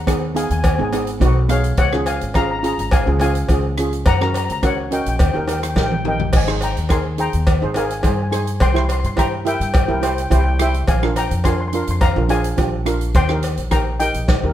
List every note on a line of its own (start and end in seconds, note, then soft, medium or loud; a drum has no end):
0.00 0.47 D#2 medium
0.00 0.32 F#5 medium
0.00 0.38 A#5 loud
0.07 0.25 B3 medium
0.07 0.25 D#4 medium
0.07 0.25 G#4 medium
0.07 kick medium
0.07 cross-stick medium
0.07 closed hi-hat medium
0.07 cowbell medium
0.35 0.61 B3 medium
0.35 0.61 D#4 medium
0.35 0.62 G#4 medium
0.35 0.43 F5 medium
0.35 0.42 G#5 medium
0.35 closed hi-hat medium
0.43 0.50 G#5 medium
0.50 0.77 D#2 medium
0.50 0.57 G#5 medium
0.50 closed hi-hat medium
0.59 0.65 G#5 medium
0.64 0.73 G#5 medium
0.64 kick loud
0.64 closed hi-hat medium
0.64 cowbell loud
0.75 1.19 G#1 loud
0.75 0.87 B3 medium
0.75 0.81 G#5 medium
0.79 0.88 D#4 medium
0.79 0.88 G#4 medium
0.79 0.89 G#5 medium
0.92 1.10 B3 medium
0.92 1.11 D#4 medium
0.92 1.11 G#4 medium
0.92 closed hi-hat medium
0.92 cowbell medium
1.07 closed hi-hat medium
1.20 1.75 B1 loud
1.20 1.38 B3 medium
1.20 1.39 D#4 medium
1.20 1.39 F#4 loud
1.20 kick medium
1.20 closed hi-hat medium
1.20 cowbell medium
1.49 1.75 B3 medium
1.49 1.75 D#4 medium
1.49 1.76 G#4 medium
1.49 1.63 C#5 medium
1.49 1.63 F5 medium
1.49 cross-stick medium
1.49 closed hi-hat medium
1.64 closed hi-hat medium
1.77 2.19 C#2 medium
1.77 2.06 C#5 medium
1.77 2.05 F#5 loud
1.77 kick loud
1.77 closed hi-hat medium
1.77 cowbell medium
1.93 2.19 C#4 medium
1.93 2.19 F4 medium
1.93 2.19 G#4 medium
1.93 cross-stick medium
2.06 2.34 F5 medium
2.06 2.36 G#5 medium
2.06 closed hi-hat medium
2.06 cowbell medium
2.21 2.75 G#1 medium
2.21 closed hi-hat medium
2.34 2.53 C#4 medium
2.34 2.53 F4 medium
2.34 2.53 G#4 medium
2.34 2.43 F5 medium
2.34 2.41 A#5 loud
2.34 kick medium
2.34 cross-stick medium
2.34 closed hi-hat medium
2.34 cowbell medium
2.42 2.50 A#5 medium
2.51 2.57 A#5 medium
2.59 2.89 C#4 medium
2.59 2.64 A#5 medium
2.63 2.89 F4 medium
2.63 2.90 G#4 medium
2.63 2.72 A#5 medium
2.63 closed hi-hat medium
2.73 2.79 A#5 medium
2.78 3.05 G#1 medium
2.78 2.87 A#5 medium
2.78 closed hi-hat medium
2.91 3.06 F5 medium
2.91 3.05 G#5 loud
2.91 kick loud
2.91 closed hi-hat medium
2.91 cowbell loud
3.06 3.47 C#2 loud
3.06 3.15 C#4 medium
3.06 3.15 F4 medium
3.06 3.15 G#4 medium
3.20 3.38 C#4 medium
3.20 3.39 F4 medium
3.20 3.39 G#4 medium
3.20 4.03 F5 medium
3.20 4.02 G#5 medium
3.20 closed hi-hat medium
3.20 cowbell medium
3.35 closed hi-hat medium
3.49 4.03 C#2 loud
3.49 3.67 C#4 medium
3.49 3.67 F4 medium
3.49 3.67 G#4 medium
3.49 kick medium
3.49 closed hi-hat medium
3.49 cowbell medium
3.78 4.04 C#4 medium
3.78 4.04 F4 medium
3.78 4.05 G#4 medium
3.78 cross-stick medium
3.78 closed hi-hat medium
3.93 closed hi-hat medium
4.06 4.47 F#2 loud
4.06 4.14 F#5 medium
4.06 4.13 A#5 loud
4.06 kick loud
4.06 closed hi-hat medium
4.06 cowbell loud
4.21 4.46 C#4 medium
4.21 4.47 F#4 medium
4.21 4.47 A#4 medium
4.21 4.28 A#5 medium
4.21 cross-stick medium
4.29 4.36 A#5 medium
4.34 4.43 A#5 medium
4.34 closed hi-hat medium
4.34 cowbell medium
4.44 4.51 A#5 medium
4.49 5.03 C#2 medium
4.49 4.59 A#5 medium
4.49 closed hi-hat medium
4.62 4.80 C#4 medium
4.62 4.81 F#4 medium
4.62 4.81 A#4 medium
4.62 4.90 C#5 medium
4.62 4.93 F#5 medium
4.62 kick medium
4.62 cross-stick medium
4.62 closed hi-hat medium
4.62 cowbell medium
4.91 5.17 C#4 medium
4.91 5.17 F#4 medium
4.91 5.17 A#4 medium
4.91 4.99 D#5 medium
4.91 4.99 G5 medium
4.91 closed hi-hat medium
5.00 5.07 G5 medium
5.06 5.19 A#1 medium
5.06 5.15 G5 medium
5.06 closed hi-hat medium
5.16 5.34 D#2 loud
5.16 5.22 G5 medium
5.16 kick loud
5.16 closed hi-hat medium
5.16 cowbell medium
5.23 5.29 G5 medium
5.31 5.74 D#2 loud
5.31 5.42 D#4 medium
5.31 5.43 G4 medium
5.31 5.37 G5 medium
5.36 5.43 A#4 medium
5.36 5.44 G5 medium
5.46 5.65 D#4 medium
5.46 5.65 G4 medium
5.46 5.66 A#4 medium
5.46 5.51 G5 soft
5.46 closed hi-hat medium
5.46 cowbell medium
5.53 5.59 G5 medium
5.61 5.67 G5 soft
5.61 cross-stick medium
5.61 closed hi-hat medium
5.68 5.74 G5 medium
5.76 6.30 A#1 loud
5.76 5.94 D#4 medium
5.76 5.94 G4 medium
5.76 5.95 A#4 medium
5.76 5.82 G5 soft
5.76 kick medium
5.76 snare medium
5.76 cowbell medium
5.84 5.90 G5 medium
5.91 5.97 G5 medium
5.91 high tom medium
6.05 6.31 D#4 medium
6.05 6.31 G4 medium
6.05 6.32 A#4 medium
6.05 6.33 D#5 medium
6.05 6.33 G5 medium
6.05 mid tom medium
6.20 floor tom medium
6.33 6.74 G#1 medium
6.33 6.61 D#5 medium
6.33 6.62 G#5 medium
6.33 kick loud
6.33 crash loud
6.33 cowbell medium
6.48 6.73 D#4 medium
6.48 6.74 G#4 medium
6.48 6.74 C5 medium
6.48 cross-stick medium
6.61 6.89 G5 medium
6.61 6.92 A#5 medium
6.61 closed hi-hat medium
6.61 cowbell medium
6.77 7.30 D#2 medium
6.77 closed hi-hat medium
6.89 7.07 D#4 medium
6.89 7.08 G#4 medium
6.89 7.08 A#4 medium
6.89 7.04 G#5 medium
6.89 7.04 C6 medium
6.89 kick medium
6.89 cross-stick medium
6.89 closed hi-hat medium
6.89 cowbell medium
7.18 7.44 D#4 medium
7.18 7.45 G#4 medium
7.18 7.45 C5 medium
7.18 7.72 G5 medium
7.18 7.78 A#5 medium
7.18 closed hi-hat medium
7.33 7.60 D#2 medium
7.33 closed hi-hat medium
7.47 kick loud
7.47 closed hi-hat medium
7.47 cowbell loud
7.62 8.02 G#1 loud
7.62 7.70 D#4 medium
7.62 7.71 G#4 medium
7.62 7.71 C5 medium
7.74 7.93 D#4 medium
7.74 7.94 G#4 medium
7.74 7.94 A#4 medium
7.74 7.83 F5 medium
7.74 7.84 G#5 medium
7.74 closed hi-hat medium
7.74 cowbell medium
7.85 7.90 G#5 medium
7.90 7.99 G#5 medium
7.90 closed hi-hat medium
8.00 8.21 D#4 medium
8.00 8.21 G#4 medium
8.00 8.06 G#5 medium
8.00 cowbell medium
8.04 8.57 G2 loud
8.04 8.22 C5 medium
8.04 8.14 G#5 medium
8.04 kick medium
8.04 closed hi-hat medium
8.15 8.21 G#5 medium
8.22 8.29 G#5 medium
8.31 8.58 D#4 medium
8.31 8.58 G#4 medium
8.31 8.59 C5 medium
8.31 8.36 G#5 medium
8.31 cross-stick medium
8.31 closed hi-hat medium
8.37 8.44 G#5 medium
8.45 8.52 G#5 medium
8.45 closed hi-hat medium
8.60 9.01 C2 medium
8.60 8.69 G5 medium
8.60 8.69 C6 loud
8.60 kick loud
8.60 closed hi-hat medium
8.60 cowbell loud
8.70 9.00 E4 medium
8.70 8.77 C6 medium
8.75 9.01 G4 medium
8.75 9.01 C5 medium
8.75 8.84 C6 medium
8.75 cross-stick medium
8.85 8.91 C6 medium
8.89 8.99 C6 medium
8.89 closed hi-hat medium
8.89 cowbell medium
9.00 9.05 C6 medium
9.04 9.57 G2 medium
9.04 9.13 C6 medium
9.04 closed hi-hat medium
9.16 9.35 E4 medium
9.16 9.35 G4 medium
9.16 9.36 C5 medium
9.16 9.45 G5 medium
9.16 9.48 A#5 medium
9.16 kick medium
9.16 cross-stick medium
9.16 closed hi-hat medium
9.16 cowbell medium
9.45 9.71 E4 medium
9.45 9.72 G4 medium
9.45 9.72 A#4 medium
9.45 9.54 E5 medium
9.45 9.53 G5 medium
9.45 closed hi-hat medium
9.54 9.60 G5 medium
9.60 9.87 G2 medium
9.60 9.67 G5 medium
9.60 closed hi-hat medium
9.69 9.74 G5 medium
9.74 9.82 G5 medium
9.74 kick loud
9.74 closed hi-hat medium
9.74 cowbell loud
9.83 9.89 G5 medium
9.88 10.29 C2 loud
9.88 9.97 E4 medium
9.88 9.97 G4 medium
9.88 9.98 A#4 medium
9.88 9.97 G5 medium
9.98 10.20 E4 medium
9.98 10.06 G5 medium
10.02 10.20 G4 medium
10.02 10.20 C5 medium
10.02 closed hi-hat medium
10.02 cowbell medium
10.07 10.13 G5 medium
10.15 10.21 G5 medium
10.15 closed hi-hat medium
10.22 10.29 G5 medium
10.30 10.85 C2 loud
10.30 10.48 E4 medium
10.30 10.49 G4 medium
10.30 10.49 C5 medium
10.30 10.36 G5 medium
10.30 kick medium
10.30 closed hi-hat medium
10.30 cowbell medium
10.38 10.43 G5 medium
10.44 10.52 G5 medium
10.59 10.86 E4 medium
10.59 10.86 G4 medium
10.59 10.86 C5 medium
10.59 10.87 E5 medium
10.59 10.90 G5 medium
10.59 cross-stick medium
10.59 closed hi-hat medium
10.74 closed hi-hat medium
10.88 11.29 A#1 medium
10.88 11.15 F5 medium
10.88 11.18 G#5 medium
10.88 kick loud
10.88 closed hi-hat medium
10.88 cowbell medium
11.03 11.28 D4 medium
11.03 11.29 F4 medium
11.03 11.29 A#4 medium
11.03 cross-stick medium
11.16 11.44 G5 medium
11.16 11.46 A#5 loud
11.16 closed hi-hat medium
11.16 cowbell medium
11.31 11.84 F2 medium
11.31 closed hi-hat medium
11.44 11.63 D4 medium
11.44 11.63 F4 medium
11.44 11.63 A#4 medium
11.44 11.53 G#5 medium
11.44 11.51 C6 medium
11.44 kick medium
11.44 cross-stick medium
11.44 closed hi-hat medium
11.44 cowbell medium
11.53 11.59 C6 medium
11.60 11.67 C6 medium
11.68 11.74 C6 medium
11.73 11.99 D4 medium
11.73 12.00 F4 medium
11.73 12.00 A#4 medium
11.73 11.82 C6 medium
11.73 closed hi-hat medium
11.83 11.90 C6 medium
11.88 12.15 F2 medium
11.88 11.97 C6 medium
11.88 closed hi-hat medium
12.01 12.28 F5 medium
12.01 12.31 A#5 loud
12.01 kick loud
12.01 closed hi-hat medium
12.01 cowbell medium
12.16 12.56 A#1 loud
12.16 12.25 D4 medium
12.16 12.25 F4 medium
12.16 12.26 A#4 medium
12.29 12.47 D4 medium
12.29 12.48 F4 medium
12.29 12.48 G#4 medium
12.29 13.12 F5 medium
12.29 13.12 G#5 medium
12.29 closed hi-hat medium
12.29 cowbell medium
12.44 closed hi-hat medium
12.57 13.12 A#1 loud
12.57 12.75 D4 medium
12.57 12.76 F4 medium
12.57 12.76 G4 medium
12.57 kick medium
12.57 closed hi-hat medium
12.57 cowbell medium
12.86 13.12 D4 medium
12.86 13.12 F4 medium
12.86 13.13 A#4 medium
12.86 cross-stick medium
12.86 closed hi-hat medium
13.01 closed hi-hat medium
13.14 13.56 D#2 loud
13.14 13.69 G5 medium
13.14 13.69 C6 loud
13.14 kick loud
13.14 closed hi-hat medium
13.14 cowbell medium
13.29 13.55 D#4 medium
13.29 13.56 G4 medium
13.29 13.56 A#4 medium
13.29 cross-stick medium
13.43 closed hi-hat medium
13.43 cowbell medium
13.57 14.12 A#1 medium
13.57 closed hi-hat medium
13.71 13.89 D#4 medium
13.71 13.90 G4 medium
13.71 13.90 A#4 medium
13.71 13.85 G5 medium
13.71 13.84 A#5 loud
13.71 kick medium
13.71 cross-stick medium
13.71 closed hi-hat medium
13.71 cowbell medium
14.00 14.26 D#4 medium
14.00 14.27 G4 medium
14.00 14.27 A#4 medium
14.00 14.53 D#5 medium
14.00 14.53 G5 medium
14.00 closed hi-hat medium
14.14 14.42 A#1 medium
14.14 closed hi-hat medium
14.28 kick loud
14.28 snare medium
14.28 cowbell medium
14.44 14.53 D#2 loud
14.44 14.52 D#4 medium
14.44 14.52 G4 medium
14.44 14.53 A#4 medium